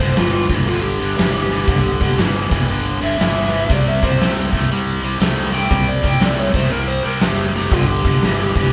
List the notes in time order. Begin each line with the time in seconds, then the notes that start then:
Already playing: C5
0.00 G1 G2 D3
0.16 G1 G2 E3 F4, snare, open hi-hat
0.34 F4
0.49 G1 G2 E3, kick, open hi-hat
0.66 G1 G2 D3 F4, open hi-hat
0.83 G4
0.99 G1 G2 D3, open hi-hat
1.17 G1 G2 E3, snare, open hi-hat
1.50 G2 E3, open hi-hat
1.67 G1 G2 D3, kick, open hi-hat
2.00 G1 G2 D3, kick, open hi-hat
2.18 G1 G2 E3, snare, open hi-hat
2.51 G1 G2 E3, kick, open hi-hat
2.68 G1 G2 D3, open hi-hat
3.01 G1 G2 D3 E5, open hi-hat
3.18 G1 G2 E3, snare, open hi-hat
3.50 G2 E3, open hi-hat
3.69 C2 C3 G3 D5, kick, open hi-hat
3.88 E5
4.02 C2 C3 G3 C5, kick, open hi-hat
4.19 C2 C3 A3, snare, open hi-hat
4.52 C2 C3 A3, kick, open hi-hat
4.70 C2 C3 G3, open hi-hat
5.03 C2 C3 G3, open hi-hat
5.20 C2 C3 A3, snare, open hi-hat
5.52 C3 A3 G5, open hi-hat
5.69 C2 C3 G3, kick, open hi-hat
5.88 D5
6.03 C2 C3 G3, kick, open hi-hat
6.07 G5
6.20 C2 C3 A3 D5, snare, open hi-hat
6.39 C#5
6.54 C2 C3 A3 C5, kick, open hi-hat
6.69 C2 C3 G3 A#4, open hi-hat
6.88 C5
7.04 C2 C3 G3 A#4, open hi-hat
7.20 F#1 C3 A3 G4, snare, open hi-hat
7.54 C3 A3 G4, open hi-hat
7.71 G1 G2 D3 F4, kick, open hi-hat
7.88 G4
8.04 G1 G2 D3, kick, open hi-hat
8.22 G1 G2 E3, snare, open hi-hat
8.56 G1 G2 E3, kick, open hi-hat